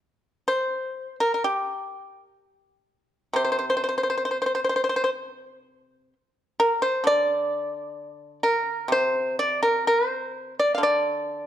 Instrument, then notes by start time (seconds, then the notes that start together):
pipa
0.48 C5
1.20 A#4
1.34 A#4
1.44 G4
3.33 C3 C5
3.44 C5
3.52 C5
3.59 C5
3.70 C5
3.77 C5
3.84 C5
3.89 C5
3.98 C5
4.03 C5
4.10 C5
4.17 C5
4.25 C5
4.31 C5
4.42 C5
4.46 C5
4.55 C5
4.64 C5
4.69 C5
4.76 C5
4.84 C5
4.89 C5
4.96 C5
5.04 C5
6.60 A#4
6.82 C5
7.04 D3 D5
8.43 A#4
8.88 C3 C5
9.39 D5
9.63 A#4
9.87 A#4
10.07 C5
10.59 D5
10.75 D3 F5
10.83 D5